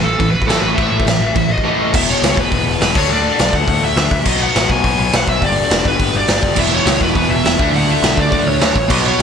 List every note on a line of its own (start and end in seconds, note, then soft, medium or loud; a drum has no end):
0.01 0.15 A1 medium
0.01 0.31 A4 medium
0.19 0.30 A1 medium
0.19 0.32 A2 medium
0.19 0.32 E3 medium
0.19 kick loud
0.19 crash medium
0.31 0.44 A1 loud
0.31 0.46 B4 medium
0.42 kick medium
0.46 0.58 A1 medium
0.46 0.75 A2 medium
0.46 0.76 E3 loud
0.46 0.76 A3 loud
0.46 0.60 A4 medium
0.46 crash medium
0.50 snare loud
0.60 0.73 A1 medium
0.60 0.75 B4 medium
0.75 0.88 A1 medium
0.75 1.05 A2 medium
0.75 1.05 E3 loud
0.75 1.06 A3 loud
0.75 1.59 E5 medium
0.75 kick loud
0.75 crash medium
0.91 1.02 A1 medium
1.00 kick loud
1.05 1.16 A1 medium
1.05 1.19 A2 medium
1.05 1.20 E3 medium
1.05 snare loud
1.05 crash medium
1.20 1.31 A1 loud
1.35 1.46 A1 medium
1.35 1.48 A2 medium
1.35 1.48 E3 medium
1.35 kick loud
1.35 crash medium
1.49 1.60 A1 medium
1.49 1.95 D#5 medium
1.58 kick medium
1.64 1.92 A2 medium
1.64 1.93 E3 loud
1.64 1.93 A3 medium
1.92 2.14 E1 loud
1.92 2.93 E2 loud
1.92 2.93 B2 loud
1.92 2.95 E3 medium
1.92 2.10 E5 loud
1.92 kick loud
1.92 crash loud
2.10 2.39 C#5 medium
2.22 2.32 C#2 medium
2.22 snare loud
2.22 open hi-hat medium
2.37 2.47 E1 loud
2.37 2.53 B4 medium
2.37 kick medium
2.52 2.62 E1 medium
2.52 2.81 B4 loud
2.52 kick loud
2.52 open hi-hat medium
2.67 2.77 E1 loud
2.81 2.91 E1 medium
2.81 2.96 B4 medium
2.81 snare loud
2.81 open hi-hat medium
2.93 3.05 D2 medium
2.93 4.09 D3 loud
2.93 4.10 A3 loud
2.93 4.11 D4 loud
2.93 3.11 C#5 medium
2.93 kick loud
2.93 crash loud
3.09 3.30 D2 loud
3.09 3.56 D5 loud
3.39 3.49 B1 loud
3.39 snare loud
3.39 open hi-hat medium
3.53 3.63 D2 loud
3.53 3.84 F#5 loud
3.53 kick medium
3.68 3.78 D2 loud
3.68 kick loud
3.68 open hi-hat medium
3.83 3.92 D2 loud
3.83 4.26 E5 loud
3.96 4.07 D2 loud
3.96 snare loud
3.96 open hi-hat medium
4.11 4.21 D2 loud
4.11 kick loud
4.24 4.46 B1 medium
4.24 5.40 B2 loud
4.24 5.41 F#3 loud
4.24 7.60 B3 loud
4.24 4.42 D#5 loud
4.24 kick loud
4.24 crash loud
4.42 4.71 F#5 loud
4.55 4.65 A1 medium
4.55 snare loud
4.55 open hi-hat medium
4.70 4.80 B1 loud
4.70 4.84 G#5 loud
4.70 kick loud
4.84 4.94 B1 medium
4.84 5.14 G#5 loud
4.84 kick loud
4.84 open hi-hat medium
4.99 5.08 B1 loud
5.13 5.23 B1 loud
5.13 5.29 F#5 loud
5.13 snare loud
5.13 open hi-hat medium
5.27 5.38 B1 loud
5.27 5.42 E5 loud
5.27 kick loud
5.40 5.62 G1 loud
5.40 6.55 G2 medium
5.40 6.57 D3 loud
5.40 6.57 G3 loud
5.40 kick loud
5.40 open hi-hat medium
5.45 5.87 D5 loud
5.71 5.81 E1 loud
5.71 snare loud
5.71 open hi-hat medium
5.85 5.95 G1 loud
5.85 6.16 B4 medium
5.85 kick medium
5.99 6.10 G1 medium
5.99 kick loud
5.99 open hi-hat medium
6.14 6.24 G1 loud
6.14 6.56 D5 loud
6.28 6.39 G1 loud
6.28 snare loud
6.28 open hi-hat medium
6.43 6.53 F#1 medium
6.43 kick loud
6.55 6.78 E1 medium
6.55 7.57 E2 loud
6.55 7.57 B2 loud
6.55 7.59 E3 loud
6.55 kick loud
6.55 crash loud
6.60 6.72 E5 loud
6.74 7.00 C#5 loud
6.86 6.96 C#2 medium
6.86 snare loud
6.86 open hi-hat medium
7.01 7.11 E1 medium
7.01 7.15 B4 medium
7.01 kick medium
7.15 7.26 E1 medium
7.15 7.31 B4 loud
7.15 kick loud
7.15 open hi-hat medium
7.30 7.40 E1 loud
7.30 7.75 E5 loud
7.44 7.55 E1 loud
7.44 snare loud
7.44 open hi-hat medium
7.57 7.69 D2 medium
7.57 8.73 D3 loud
7.57 8.74 A3 loud
7.57 8.75 D4 loud
7.57 kick loud
7.73 7.93 D2 medium
7.73 7.91 F#5 loud
7.73 open hi-hat medium
7.91 8.19 E5 loud
8.02 8.12 B1 loud
8.02 snare loud
8.02 open hi-hat medium
8.18 8.28 D2 loud
8.18 8.30 D5 medium
8.18 kick loud
8.31 8.42 D2 medium
8.31 8.46 D5 loud
8.31 kick loud
8.31 open hi-hat medium
8.46 8.57 D2 medium
8.46 8.91 C#5 medium
8.59 8.71 D2 loud
8.59 8.74 D3 medium
8.59 8.75 A3 loud
8.59 8.76 D4 loud
8.59 snare loud
8.59 open hi-hat medium
8.75 8.90 A1 loud
8.75 kick loud
8.88 9.10 B1 loud
8.88 9.22 B2 loud
8.88 9.22 F#3 loud
8.88 9.22 B3 loud
8.88 9.05 D#5 loud
8.88 kick loud
8.88 crash loud
9.06 9.22 C#5 loud